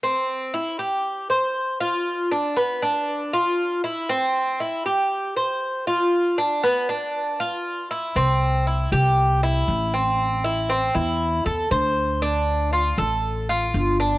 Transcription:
<<
  \new Staff \with { instrumentName = "Cuban tres" } { \time 4/4 \key c \major \tempo 4 = 118 c'4 e'8 g'4 c''4 f'8~ | f'8 d'8 b8 d'4 f'4 e'8 | c'4 e'8 g'4 c''4 f'8~ | f'8 d'8 b8 d'4 f'4 e'8 |
c'4 e'8 g'4 e'4 c'8~ | c'8 e'8 c'8 e'4 a'8 c''4 | d'4 f'8 a'4 f'4 d'8 | }
  \new Staff \with { instrumentName = "Upright bass" } { \clef bass \time 4/4 \key c \major r1 | r1 | r1 | r1 |
c,4. c,4. a,,4~ | a,,4. e,4 e,8 d,4~ | d,4. a,,4. g,,4 | }
>>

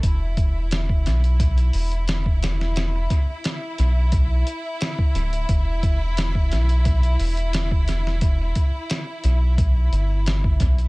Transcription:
<<
  \new Staff \with { instrumentName = "Violin section" } { \time 4/4 \key e \minor \tempo 4 = 88 e'1~ | e'1~ | e'1~ | e'1 | }
  \new Staff \with { instrumentName = "Sub bass" } { \clef bass \time 4/4 \key e \minor e,,4. b,,4 e,,4.~ | e,,8 r4 b,,4 r4 d,,8 | e,,4. b,,4 e,,4.~ | e,,8 r4 b,,4 g,,4 b,,8 | }
  \new DrumStaff \with { instrumentName = "Drums" } \drummode { \time 4/4 <hh bd>8 <hh bd>8 <hh sn>16 bd16 <hh sn>16 hh16 <hh bd>16 hh16 hho16 hh16 <hh sn>16 bd16 <hh sn>16 sn16 | <hh sn>8 <hh bd>8 <hh sn>8 hh8 <hh bd>8 hh8 <hh sn>16 bd16 hh16 hh16 | <hh bd>8 <hh bd>8 <hh sn>16 bd16 <hh sn>16 hh16 <hh bd>16 hh16 hho16 hh16 <hh sn>16 bd16 <hh sn>16 sn16 | <hh bd>8 <hh bd>8 <hh sn>8 hh8 <hh bd>8 hh8 <hh sn>16 bd16 <hh bd>16 hh16 | }
>>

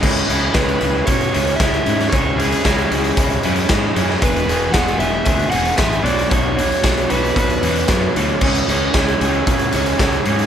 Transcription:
<<
  \new Staff \with { instrumentName = "Overdriven electric guitar" } { \time 4/4 \key cis \phrygian \tempo 4 = 114 r4 b'4 cis''4 e''4 | cis''8 gis'2 r4. | b'4 fis''8 e''8 e''8 fis''8 e''8 d''8 | cis''4. b'8 b'4. r8 |
r1 | }
  \new Staff \with { instrumentName = "Clean electric guitar" } { \time 4/4 \key cis \phrygian <cis e gis cis' e'>8 <cis e gis cis' e'>8 <cis e gis cis' e'>8 <cis e gis cis' e'>8 <cis e gis cis' e'>8 <cis e gis cis' e'>8 <cis e gis cis' e'>8 <cis e gis cis' e'>8 | <cis e gis cis' e'>8 <cis e gis cis' e'>8 <cis e gis cis' e'>8 <cis e gis cis' e'>8 <cis e gis cis' e'>8 <cis e gis cis' e'>8 <cis e gis cis' e'>8 <cis e gis cis' e'>8 | <e, b, e gis b gis'>8 <e, b, e gis b gis'>8 <e, b, e gis b gis'>8 <e, b, e gis b gis'>8 <e, b, e gis b gis'>8 <e, b, e gis b gis'>8 <e, b, e gis b gis'>8 <b, fis b d' fis' cis''>8 | <b, fis b d' fis' cis''>8 <b, fis b d' fis' cis''>8 <b, fis b d' fis' cis''>8 <b, fis b d' fis' cis''>8 <b, fis b d' fis' cis''>8 <b, fis b d' fis' cis''>8 <b, fis b d' fis' cis''>8 <b, fis b d' fis' cis''>8 |
<cis gis cis' e' gis' cis''>8 <cis gis cis' e' gis' cis''>8 <cis gis cis' e' gis' cis''>8 <cis gis cis' e' gis' cis''>8 <cis gis cis' e' gis' cis''>8 <cis gis cis' e' gis' cis''>8 <cis gis cis' e' gis' cis''>8 <cis gis cis' e' gis' cis''>8 | }
  \new Staff \with { instrumentName = "Fingered electric bass" } { \clef bass \time 4/4 \key cis \phrygian cis,8 cis,8 cis,8 cis,8 b,8 cis,8 cis,8 gis,8 | cis,4 cis,8 cis,8 cis,8 fis,8 gis,8 fis,8 | e,,8 e,,8 e,,8 e,,8 d,8 e,,8 a,,8 b,,8 | b,,4 b,,8 b,,8 b,,8 e,8 fis,8 d,8 |
cis,8 cis,8 cis,8 cis,8 b,8 cis,8 cis,8 gis,8 | }
  \new DrumStaff \with { instrumentName = "Drums" } \drummode { \time 4/4 <cymc bd>16 hh16 hh8 <hh bd sn>16 hh16 hh8 <hh bd>16 hh16 hh16 hh16 <hh bd sn>16 hh16 hh16 <hh sn>16 | <hh bd>8 hh16 hh16 <hh bd sn>16 hh16 hh16 hh16 <hh bd>16 hh16 hh16 hh16 <hh bd sn>8 hh16 sn16 | <hh bd>16 hh16 hh8 <hh bd sn>16 hh16 hh8 <hh bd>16 hh16 hh16 hh16 <hh bd sn>16 hh16 hh16 hh16 | <hh bd>8 hh16 hh16 <hh bd sn>16 hh16 hh16 hh16 <hh bd>16 hh16 hh16 hh16 <hh bd sn>8 hh8 |
<cymc bd>16 hh16 hh8 <hh bd sn>16 hh16 hh8 <hh bd>16 hh16 hh16 hh16 <hh bd sn>16 hh16 hh16 hh16 | }
>>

